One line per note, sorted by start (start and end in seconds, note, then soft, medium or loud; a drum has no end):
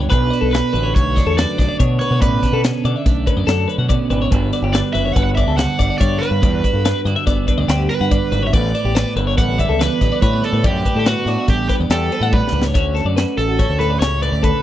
0.00 0.96 B3 medium
0.00 0.12 D4 soft
0.10 0.30 B1 medium
0.10 0.74 B2 medium
0.10 0.53 D4 medium
0.10 0.31 B4 medium
0.10 0.52 B4 medium
0.10 kick loud
0.10 closed hi-hat medium
0.31 0.73 F#4 medium
0.31 0.42 D5 medium
0.31 snare soft
0.31 closed hi-hat medium
0.41 0.60 B1 medium
0.41 0.52 A4 medium
0.51 1.17 D4 medium
0.51 0.72 B4 medium
0.51 0.95 B4 medium
0.51 snare loud
0.51 closed hi-hat medium
0.73 0.92 A1 medium
0.73 2.83 D3 medium
0.73 1.37 F#4 medium
0.73 0.83 B4 medium
0.73 closed hi-hat medium
0.83 0.95 C#5 medium
0.95 1.23 B1 loud
0.95 2.19 A3 medium
0.95 1.16 B4 medium
0.95 1.37 C#5 medium
0.95 kick medium
0.95 closed hi-hat medium
1.16 1.58 D4 medium
1.16 1.26 D5 medium
1.16 kick medium
1.16 snare soft
1.16 closed hi-hat medium
1.26 1.44 E2 medium
1.26 1.37 A4 medium
1.37 1.79 F#2 medium
1.37 2.01 F#4 medium
1.37 1.58 B4 medium
1.37 1.76 D5 loud
1.37 snare loud
1.37 closed hi-hat loud
1.58 1.68 B1 medium
1.58 1.80 D4 medium
1.58 1.68 D5 medium
1.58 kick medium
1.58 snare soft
1.58 closed hi-hat medium
1.69 1.79 D5 medium
1.79 1.98 B2 medium
1.79 2.19 B2 medium
1.79 2.22 D4 medium
1.79 2.00 C#5 medium
1.79 kick loud
1.79 closed hi-hat loud
1.99 2.42 F#4 medium
1.99 2.11 B4 medium
1.99 2.19 C#5 medium
1.99 closed hi-hat medium
2.11 2.21 B2 medium
2.11 2.22 B4 medium
2.21 2.40 A2 loud
2.21 2.84 B2 medium
2.21 2.62 C#4 medium
2.21 2.60 B4 medium
2.21 2.44 D5 medium
2.21 kick loud
2.21 closed hi-hat loud
2.42 2.85 D4 medium
2.42 2.53 B4 medium
2.42 kick medium
2.42 snare soft
2.42 closed hi-hat medium
2.52 2.71 B2 medium
2.52 2.64 A4 medium
2.64 3.25 C#4 medium
2.64 2.84 B4 medium
2.64 snare loud
2.64 closed hi-hat medium
2.84 2.94 B2 medium
2.84 4.30 D3 medium
2.84 3.48 D4 medium
2.84 2.96 D5 medium
2.84 closed hi-hat medium
2.96 3.06 E5 medium
3.06 3.24 B1 medium
3.06 4.29 A3 medium
3.06 3.27 D5 medium
3.06 kick medium
3.06 snare soft
3.06 closed hi-hat medium
3.26 3.67 C#4 medium
3.26 3.37 B4 medium
3.26 kick medium
3.26 closed hi-hat medium
3.37 3.46 F#2 medium
3.37 3.47 D5 medium
3.47 3.65 F#2 medium
3.47 3.90 F#2 medium
3.47 4.10 D4 medium
3.47 3.68 A4 medium
3.47 snare loud
3.47 closed hi-hat medium
3.68 3.88 C#4 medium
3.68 3.79 B4 medium
3.68 closed hi-hat medium
3.78 3.97 B2 medium
3.78 3.89 F#5 medium
3.89 4.29 B2 medium
3.89 4.29 C#4 soft
3.89 4.10 D5 medium
3.89 kick loud
3.89 closed hi-hat medium
4.10 4.29 G#1 medium
4.10 4.33 D4 medium
4.10 4.21 B4 medium
4.10 closed hi-hat medium
4.22 4.31 C#5 medium
4.31 4.50 G1 medium
4.31 5.98 G2 medium
4.31 4.92 D3 medium
4.31 5.14 B3 medium
4.31 4.73 D4 medium
4.31 4.53 F#4 medium
4.31 4.53 B4 medium
4.31 kick loud
4.31 closed hi-hat medium
4.53 4.94 F#4 medium
4.53 4.63 D5 medium
4.53 snare soft
4.53 closed hi-hat medium
4.62 4.81 G1 loud
4.62 4.74 G4 medium
4.73 5.36 D4 medium
4.73 4.93 B4 medium
4.73 4.79 D5 medium
4.73 snare loud
4.73 closed hi-hat medium
4.93 5.13 F#1 medium
4.93 5.56 D3 medium
4.93 5.56 F#4 medium
4.93 5.05 B4 medium
4.93 5.13 E5 medium
4.93 snare soft
4.93 closed hi-hat medium
5.05 5.16 C#5 medium
5.13 5.44 G1 medium
5.13 7.27 B3 medium
5.13 5.37 B4 medium
5.13 5.22 F#5 medium
5.13 kick loud
5.13 closed hi-hat medium
5.23 5.28 F#5 medium
5.35 5.79 D4 medium
5.35 5.47 D5 medium
5.35 5.55 E5 medium
5.35 kick medium
5.35 closed hi-hat medium
5.47 5.65 C#2 medium
5.47 5.58 A4 medium
5.57 6.39 D3 medium
5.57 6.21 F#4 medium
5.57 5.79 B4 medium
5.57 5.97 F#5 medium
5.57 snare loud
5.57 closed hi-hat loud
5.79 5.89 G1 medium
5.79 6.00 D4 medium
5.79 5.89 D5 medium
5.79 kick medium
5.79 closed hi-hat medium
5.90 6.00 D5 medium
5.98 6.39 G2 medium
5.98 6.19 G2 medium
5.98 6.43 D4 medium
5.98 6.21 C#5 medium
5.98 6.21 D5 medium
5.98 kick loud
5.98 closed hi-hat loud
6.18 7.00 B4 medium
6.18 6.31 B4 medium
6.22 6.40 F#4 medium
6.22 snare soft
6.22 closed hi-hat medium
6.31 6.44 G2 medium
6.31 6.42 B4 medium
6.42 6.61 E2 loud
6.42 8.10 G2 medium
6.42 6.86 D4 medium
6.42 6.64 D5 medium
6.42 kick loud
6.42 closed hi-hat medium
6.64 7.06 F#4 medium
6.64 6.75 B4 medium
6.64 kick medium
6.64 closed hi-hat medium
6.73 6.92 G2 medium
6.73 6.85 A4 medium
6.85 7.48 D4 medium
6.85 7.06 B4 medium
6.85 snare loud
6.85 closed hi-hat medium
7.05 7.15 G2 medium
7.05 7.67 D3 medium
7.05 7.68 F#4 medium
7.05 7.16 D5 medium
7.05 closed hi-hat medium
7.16 7.26 E5 medium
7.27 7.45 G1 medium
7.27 8.53 B3 medium
7.27 7.48 D5 medium
7.27 kick medium
7.27 snare soft
7.27 closed hi-hat medium
7.48 7.90 D4 medium
7.48 7.58 B4 medium
7.48 kick medium
7.48 closed hi-hat medium
7.58 7.67 D2 medium
7.58 7.69 D5 medium
7.68 7.87 D2 medium
7.68 8.50 D3 medium
7.68 8.31 F#4 medium
7.68 7.91 G4 medium
7.68 snare loud
7.68 closed hi-hat medium
7.89 8.11 D4 medium
7.89 8.42 B4 medium
7.89 8.01 B4 medium
7.89 closed hi-hat medium
8.01 8.19 G2 medium
8.01 8.11 F#5 medium
8.11 8.51 G2 medium
8.11 8.53 D4 medium
8.11 8.32 D5 medium
8.11 kick loud
8.11 closed hi-hat medium
8.32 8.50 G#1 loud
8.32 8.51 F#4 medium
8.32 8.42 B4 medium
8.32 snare soft
8.32 closed hi-hat medium
8.43 8.53 C#5 medium
8.47 8.54 E5 medium
8.53 8.72 A1 loud
8.53 9.16 A2 medium
8.53 8.95 B3 medium
8.53 8.74 B4 medium
8.53 9.13 D5 loud
8.53 kick loud
8.53 closed hi-hat medium
8.75 9.17 D4 medium
8.75 8.85 D5 medium
8.75 snare soft
8.75 closed hi-hat medium
8.85 9.03 A1 medium
8.85 8.95 G4 medium
8.95 9.60 B3 medium
8.95 9.15 B4 medium
8.95 snare loud
8.95 closed hi-hat medium
9.16 9.35 G1 medium
9.16 11.27 D3 medium
9.16 9.80 D4 medium
9.16 9.27 B4 medium
9.16 closed hi-hat medium
9.27 9.37 C#5 medium
9.37 9.65 A1 loud
9.37 11.48 G3 medium
9.37 9.58 B4 medium
9.37 9.60 F#5 loud
9.37 kick loud
9.37 closed hi-hat medium
9.58 10.01 B3 medium
9.58 9.69 D5 medium
9.58 9.79 E5 loud
9.58 kick medium
9.58 closed hi-hat medium
9.68 9.87 C#2 medium
9.68 9.80 A4 medium
9.79 10.22 E2 medium
9.79 10.43 D4 medium
9.79 10.01 B4 medium
9.79 10.20 B4 medium
9.79 snare loud
9.79 closed hi-hat loud
10.01 10.10 A1 medium
10.01 10.12 A3 medium
10.01 10.11 D5 medium
10.01 kick medium
10.01 snare soft
10.01 closed hi-hat medium
10.12 10.21 B3 soft
10.12 10.22 D5 medium
10.21 10.62 A2 medium
10.21 10.41 A2 medium
10.21 10.33 A3 medium
10.21 10.44 B4 medium
10.21 10.43 C#5 medium
10.21 kick loud
10.21 closed hi-hat medium
10.33 10.62 B3 medium
10.43 10.85 D4 medium
10.43 10.63 A4 medium
10.43 10.52 B4 medium
10.43 closed hi-hat medium
10.53 10.66 A2 medium
10.53 10.64 B4 medium
10.63 10.83 F#2 medium
10.63 11.27 A2 medium
10.63 11.06 B3 medium
10.63 10.98 G4 medium
10.63 10.85 D5 medium
10.63 kick loud
10.63 closed hi-hat medium
10.85 11.27 D4 medium
10.85 10.96 B4 medium
10.85 kick medium
10.85 closed hi-hat medium
10.95 11.14 A2 medium
10.95 11.07 A4 medium
10.99 11.06 G4 medium
11.06 11.69 B3 medium
11.06 11.46 F#4 medium
11.06 11.27 B4 medium
11.06 snare loud
11.06 closed hi-hat medium
11.26 11.36 A2 medium
11.26 11.90 D4 medium
11.26 11.38 D5 medium
11.26 snare soft
11.26 closed hi-hat medium
11.38 11.49 E5 medium
11.48 11.67 A1 medium
11.48 12.75 G3 medium
11.48 11.67 G4 medium
11.48 11.69 D5 medium
11.48 kick loud
11.48 snare soft
11.48 closed hi-hat medium
11.69 12.11 B3 medium
11.69 11.74 G4 medium
11.69 11.81 B4 medium
11.69 kick medium
11.69 snare soft
11.69 closed hi-hat medium
11.80 11.89 E2 medium
11.80 11.91 D5 medium
11.90 12.08 E2 medium
11.90 12.33 E2 medium
11.90 12.51 D4 medium
11.90 12.12 G4 medium
11.90 12.34 A4 medium
11.90 snare loud
11.90 closed hi-hat medium
12.12 12.22 A3 medium
12.12 12.23 B4 medium
12.12 closed hi-hat medium
12.21 12.40 A2 medium
12.21 12.31 B3 soft
12.21 12.33 F#5 medium
12.31 12.74 A2 medium
12.31 12.72 B3 medium
12.31 12.63 B4 medium
12.31 12.54 D5 medium
12.31 kick loud
12.31 high tom medium
12.48 snare medium
12.52 12.71 C#2 medium
12.52 12.76 D4 medium
12.52 12.64 B4 medium
12.62 12.73 C#5 medium
12.62 snare medium
12.74 13.03 D2 medium
12.74 13.17 D3 medium
12.74 13.79 A3 medium
12.74 13.58 C#4 medium
12.74 13.16 F#4 medium
12.74 12.96 C#5 medium
12.74 kick loud
12.74 closed hi-hat medium
12.95 13.06 A4 medium
12.95 snare soft
12.95 closed hi-hat medium
13.05 13.24 F#2 medium
13.05 13.17 D5 medium
13.17 14.62 F#4 medium
13.17 13.37 B4 medium
13.17 snare loud
13.17 closed hi-hat medium
13.37 13.65 A1 medium
13.37 13.48 A4 medium
13.37 13.77 A4 medium
13.37 snare soft
13.37 closed hi-hat medium
13.48 13.59 F#4 medium
13.59 14.01 C#4 medium
13.59 13.80 C#5 medium
13.59 kick medium
13.59 snare soft
13.59 closed hi-hat medium
13.69 13.97 D2 medium
13.79 14.62 A2 medium
13.79 14.21 A3 medium
13.79 13.91 A4 medium
13.79 13.99 B4 medium
13.79 snare soft
13.79 closed hi-hat medium
13.90 14.00 D5 medium
13.99 14.29 C#2 medium
13.99 14.62 C#4 medium
13.99 14.22 C#5 medium
13.99 snare loud
13.99 closed hi-hat medium
14.22 14.62 A3 medium
14.22 14.32 B4 medium
14.22 14.44 D5 medium
14.22 closed hi-hat medium
14.32 14.51 D2 medium
14.32 14.43 D5 medium
14.43 14.62 D2 medium
14.43 14.62 A4 medium
14.43 14.62 B4 medium
14.43 kick loud
14.43 closed hi-hat medium